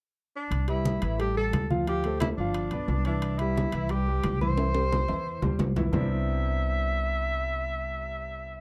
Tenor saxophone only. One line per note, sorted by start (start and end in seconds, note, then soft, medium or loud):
0.36 0.67 D4 medium
0.69 1.16 E4 medium
1.21 1.36 G4 medium
1.37 1.68 A4 medium
1.88 2.19 G4 loud
2.20 2.28 E4 medium
2.37 3.01 D4 medium
3.06 3.40 D4 medium
3.39 3.92 E4 medium
3.90 4.41 G4 loud
4.41 5.73 C5 loud
5.95 8.61 E5 medium